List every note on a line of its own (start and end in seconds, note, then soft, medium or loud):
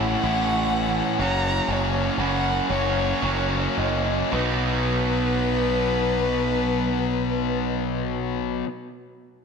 0.00 0.15 A1 loud
0.00 0.22 A2 loud
0.00 0.23 E3 loud
0.00 0.24 A3 loud
0.00 0.25 C#4 loud
0.00 0.25 E4 loud
0.00 0.72 C#5 medium
0.00 1.18 F#5 loud
0.23 1.00 A1 loud
0.23 1.17 A2 medium
0.23 1.17 E3 loud
0.23 1.17 A3 loud
0.23 1.20 C#4 loud
0.23 1.18 E4 loud
0.73 1.20 B4 medium
1.19 1.59 F#1 loud
1.19 2.18 F#3 loud
1.19 2.19 A#3 loud
1.19 2.19 C#4 loud
1.19 2.20 F#4 loud
1.19 2.19 C#5 loud
1.19 1.74 A#5 loud
1.68 2.08 F#1 medium
1.72 2.21 C#5 medium
2.17 2.59 F#1 medium
2.17 2.68 F#3 medium
2.17 2.69 A#3 medium
2.17 2.70 C#4 loud
2.17 2.70 F#4 medium
2.17 2.70 B5 medium
2.21 2.68 F#5 loud
2.69 3.12 F#1 medium
2.69 3.21 F#3 loud
2.69 3.21 A#3 medium
2.69 3.22 C#4 loud
2.69 3.23 F#4 loud
2.69 3.77 C#5 loud
2.69 3.88 C#5 medium
3.22 3.66 F#1 medium
3.22 4.29 F#3 medium
3.22 4.29 A#3 medium
3.22 4.29 C#4 loud
3.22 4.30 F#4 medium
3.76 4.22 F#1 medium
3.76 4.32 D#5 medium
4.32 8.62 B1 loud
4.32 8.65 B2 loud
4.32 8.67 F#3 loud
4.32 8.67 B3 loud
4.32 8.69 D#4 loud
4.32 4.89 B4 medium
4.32 8.48 B4 loud
4.36 8.69 F#4 loud